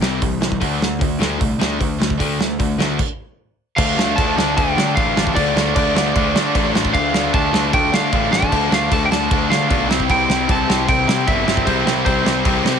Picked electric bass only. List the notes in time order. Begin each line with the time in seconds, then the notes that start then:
0.02 C2
0.22 C2
0.41 C2
0.61 D2
1.01 D2
1.20 D2
1.41 C2
1.59 D2
1.80 D2
2.00 D2
2.20 D2
2.59 D2
2.78 D2
3.78 D2
3.97 D2
4.18 D2
4.37 D2
4.58 D2
4.77 D3
4.97 A1
5.17 A1
5.37 D2
5.56 D2
5.76 D2
5.95 D2
6.15 D2
6.34 D3
6.55 A1
6.74 A1
6.95 D2
7.14 D2
7.34 D2
7.53 D2
7.73 D2
7.92 D3
8.13 A1
8.31 A1
8.53 D2
8.71 D2
8.92 D2
9.11 D2
9.31 D2
9.50 D3
9.70 B1
9.90 C2
10.10 C2
10.29 C2
10.49 C2
10.69 C2
10.89 C2
11.08 C3
11.27 G1
11.47 G1
11.67 C2
11.86 C2
12.06 C2
12.25 C2
12.45 C2
12.64 C3